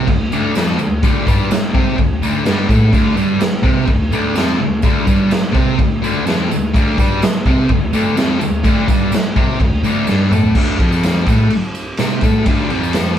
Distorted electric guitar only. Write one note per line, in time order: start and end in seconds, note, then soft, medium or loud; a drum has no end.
0.08 0.27 D2 medium
0.32 0.55 D2 medium
0.32 0.55 D3 loud
0.56 0.78 F2 medium
0.56 0.79 F3 loud
0.79 0.98 D2 medium
1.03 1.26 D2 loud
1.03 1.27 D3 loud
1.27 1.50 G2 medium
1.27 1.50 G3 loud
1.52 muted distorted electric guitar stroke medium
1.74 1.97 C3 medium
1.74 1.98 C4 medium
1.98 2.17 D2 medium
2.22 2.44 D2 medium
2.22 2.46 D3 medium
2.44 2.68 G2 medium
2.44 2.69 G3 loud
2.68 2.92 A2 loud
2.68 2.93 A3 loud
2.93 3.16 D2 medium
2.93 3.17 D3 loud
3.16 3.40 G2 medium
3.16 3.40 G3 medium
3.40 muted distorted electric guitar stroke medium
3.63 3.87 C3 medium
3.63 3.87 C4 medium
3.87 4.07 D2 medium
4.11 4.34 D2 medium
4.11 4.36 D3 loud
4.35 4.59 F2 medium
4.35 4.59 F3 loud
4.60 4.79 D2 medium
4.83 5.06 D2 medium
4.83 5.07 D3 medium
5.07 5.30 G2 medium
5.07 5.31 G3 loud
5.30 muted distorted electric guitar stroke medium
5.52 5.77 C3 loud
5.52 5.77 C4 loud
5.79 5.98 D2 medium
6.02 6.25 D2 medium
6.02 6.26 D3 loud
6.25 6.49 F2 medium
6.25 6.50 F3 loud
6.50 6.69 D2 medium
6.74 6.97 D2 medium
6.74 6.98 D3 loud
6.99 7.21 G2 medium
6.99 7.22 G3 loud
7.23 muted distorted electric guitar stroke medium
7.46 7.69 C3 medium
7.46 7.70 C4 medium
7.70 7.89 D2 medium
7.93 8.16 D2 medium
7.93 8.17 D3 loud
8.17 8.40 F2 medium
8.17 8.41 F3 loud
8.40 8.60 D2 medium
8.64 8.87 D2 loud
8.64 8.88 D3 loud
8.89 9.12 G2 medium
8.89 9.12 G3 medium
9.13 muted distorted electric guitar stroke medium
9.36 9.59 C3 medium
9.36 9.59 C4 medium
9.61 9.79 D2 medium
9.84 10.07 D2 loud
9.84 10.08 D3 loud
10.08 10.31 G2 medium
10.08 10.32 G3 loud
10.32 10.55 A2 medium
10.32 10.56 A3 loud
10.55 10.79 D2 medium
10.55 10.79 D3 medium
10.79 11.26 F2 medium
10.79 11.27 F3 medium
11.28 11.50 A2 medium
11.28 11.51 A3 loud
11.51 muted distorted electric guitar stroke soft
11.99 12.22 C3 medium
11.99 12.23 C4 loud
12.23 12.46 A2 medium
12.23 12.47 A3 loud
12.47 12.70 D2 medium
12.47 12.70 D3 medium
12.71 13.18 F2 medium
12.71 13.19 F3 medium